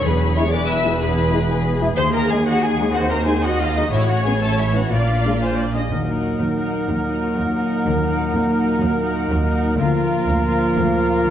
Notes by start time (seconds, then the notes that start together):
Already playing: B3
0.04 E1 E2 E3 G#4 B4 B5
0.20 E4
0.35 G#3 E4 B4 C#5 C#6
0.52 B4 D5 G#5 D6
0.67 B4 E5 E6
0.84 G#3 E4 G#4
1.00 B3 G#4 B4 B5
1.18 E4
1.30 G#3 E4
1.35 B4
1.51 G#4 G#5
1.66 B4
1.81 G#3 E4 G#4
1.97 D#2 D#3 C5 C6
2.13 D#4 A#4 A#5
2.29 G#3 D#4 G#4 G#5
2.46 F#4 F#5
2.61 G#4 G#5
2.78 G#3 D#4 F#4
2.93 C4 F#4 C5 F#5
3.09 D#4 A#4 A#5
3.26 G#3 D#4 G#4 G#5
3.43 F#4 D#5 F#5
3.60 F4 G#4 F5
3.76 G#3 D#4 F#4 D#5
3.92 A1 A2 E4 C#5 E5
4.08 C#4 F#4 F#5
4.24 B3 C#4 G#4 B4 G#5
4.41 A4 E5 A5
4.58 E4 B4 E5
4.73 B3 C#4 E4 F#4 F#5
4.92 A#1 A#2 F4 D5 F5
5.09 D4
5.24 G#3 D4 A#4
5.42 C5 G#5
5.58 A#4 D5
5.73 G#3 D4 G#4 D#5
5.90 D#2 A#2 D#3 F#3 A#3 D#4 A#4 F#5
6.06 A#3 D#4 A#4 F#5
6.23 F#4
6.39 D#2 A#4
6.55 A#3 D#4 A#4 F#5
6.72 D#4
6.88 D#2 A#3
7.03 D#4 A#4 F#5
7.22 F#4
7.37 D#2 A#4
7.53 A#3 D#4 A#4 F#5
7.71 D#4
7.86 D#2 D#3
8.02 A#3 D#4 A#4 F#5
8.18 F#4
8.34 D#2 A#4
8.50 A#3 D#4 A#4 F#5
8.66 D#4
8.82 D#2 A#3
8.98 D#4 A#4 F#5
9.15 F#4
9.31 D#2 A#4
9.46 A#3 D#4 A#4 F#5
9.62 D#4
9.77 D2 A#2 D3 F3 A#3 F4 A#4 F5
9.94 A#3 F4 A#4 F5
10.11 F4
10.27 D2 A#4
10.42 A#3 F4 A#4 F5
10.76 D2 D3
10.91 A#3 F4 A#4 F5
11.08 F4
11.24 D2 A#4